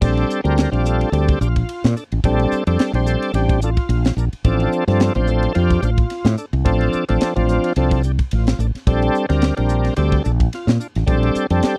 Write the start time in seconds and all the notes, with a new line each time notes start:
0.01 A#1 G3 C4 D4 A4, kick, crash
0.17 ride
0.30 hi-hat pedal
0.44 D2 G3 C4 D4 A#4, ride
0.58 snare, ride
0.72 A#1 G3 C4 D4 F4, ride
0.85 A4, hi-hat pedal
1.01 ride
1.12 D2 G3 C4 D4 G4 A4, ride
1.28 kick, ride
1.41 A#1 D4 F4 G4, hi-hat pedal
1.56 kick, ride
1.69 ride
1.84 A#2, snare, ride
1.96 D4 A4, hi-hat pedal
2.12 A1, ride
2.24 A#1 G3 C4 D4 A4, kick, ride
2.39 ride
2.52 muted fretless electric bass stroke, hi-hat pedal
2.67 F2 G3 C4 D4 A4, ride
2.78 muted fretless electric bass stroke, snare, ride
2.93 A#1 G3 C4 D4 C5, ride
3.06 A4, hi-hat pedal
3.22 ride
3.34 A1 G3 C4 D4 G4, ride
3.49 kick, ride
3.61 D4 F4 A4, hi-hat pedal
3.77 kick, ride
3.89 A#1, ride
4.05 snare, ride
4.17 A#1 D4 A#4, hi-hat pedal
4.33 muted fretless electric bass stroke, ride
4.44 A1 F3 C4 D4 A4, kick, ride
4.60 ride
4.72 hi-hat pedal
4.87 G2 F3 C4 D4 A4, snare, ride
5.00 snare, ride
5.15 A1 F3 C4 D4 C5, ride
5.27 A4, hi-hat pedal
5.43 ride
5.55 F2 F3 C4 D4 F4 G4, ride
5.70 kick, ride
5.82 A1 D4 F4 C5, hi-hat pedal
5.98 kick, ride
6.10 snare, ride
6.25 A2, snare, ride
6.38 D4 A4, hi-hat pedal
6.53 C2, ride
6.65 A1 F3 C4 D4 A4, kick, ride
6.81 ride
6.92 hi-hat pedal
7.09 A1 F3 C4 D4 A4, ride
7.21 snare, ride
7.36 A1 F3 C4 D4 F4, ride
7.49 snare, hi-hat pedal
7.64 ride
7.76 C2 F3 C4 D4 A4, ride
7.91 kick, ride
8.03 D4 G4, hi-hat pedal
8.19 kick, ride
8.31 A1 F4, ride
8.47 snare, ride
8.59 A1 D4 A4, hi-hat pedal
8.75 muted fretless electric bass stroke, snare, ride
8.87 A#1 G3 C4 D4 A4, kick, ride
9.02 ride
9.15 hi-hat pedal
9.29 D2 G3 C4 D4 A#4, snare, ride
9.42 snare, ride
9.57 A#1 G3 C4 D4 A#4, ride
9.69 hi-hat pedal
9.85 snare, ride
9.97 D2 G3 C4 D4 G4 A4, ride
10.12 kick, ride
10.24 A#1 D4 A4, hi-hat pedal
10.40 kick, ride
10.53 F4, snare, ride
10.67 A#2, snare, ride
10.80 D4 F4, hi-hat pedal
10.95 A1, snare, ride
11.06 A#1 G3 C4 D4 A4, kick, ride
11.23 ride
11.35 hi-hat pedal
11.50 F2 G3 C4 D4 A4, ride
11.63 G4, muted fretless electric bass stroke, snare, ride